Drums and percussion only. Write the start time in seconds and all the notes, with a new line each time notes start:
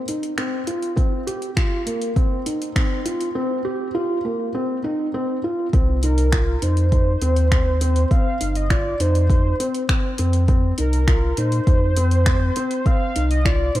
0.08 closed hi-hat
0.23 closed hi-hat
0.38 finger snap, closed hi-hat
0.67 closed hi-hat
0.82 closed hi-hat
0.97 kick, closed hi-hat
1.27 closed hi-hat
1.42 closed hi-hat
1.57 finger snap, kick, closed hi-hat
1.87 closed hi-hat
2.02 closed hi-hat
2.16 kick, closed hi-hat
2.46 closed hi-hat
2.62 closed hi-hat
2.76 finger snap, kick, closed hi-hat
3.06 closed hi-hat
3.21 closed hi-hat
5.73 kick, closed hi-hat
6.03 closed hi-hat
6.18 closed hi-hat
6.32 finger snap, kick, closed hi-hat
6.62 closed hi-hat
6.77 closed hi-hat
6.92 kick, closed hi-hat
7.22 closed hi-hat
7.36 closed hi-hat
7.52 finger snap, kick, closed hi-hat
7.81 closed hi-hat
7.96 closed hi-hat
8.11 kick, closed hi-hat
8.41 closed hi-hat
8.55 closed hi-hat
8.70 finger snap, kick, closed hi-hat
9.00 closed hi-hat
9.15 closed hi-hat
9.30 kick, closed hi-hat
9.60 closed hi-hat
9.74 closed hi-hat
9.89 finger snap, kick, closed hi-hat
10.18 closed hi-hat
10.33 closed hi-hat
10.48 kick, closed hi-hat
10.78 closed hi-hat
10.93 closed hi-hat
11.08 finger snap, kick, closed hi-hat
11.37 closed hi-hat
11.52 closed hi-hat
11.67 kick, closed hi-hat
11.96 closed hi-hat
12.11 closed hi-hat
12.26 finger snap, kick, closed hi-hat
12.56 closed hi-hat
12.71 closed hi-hat
12.86 kick, closed hi-hat
13.16 closed hi-hat
13.31 closed hi-hat
13.45 finger snap, kick, closed hi-hat
13.75 closed hi-hat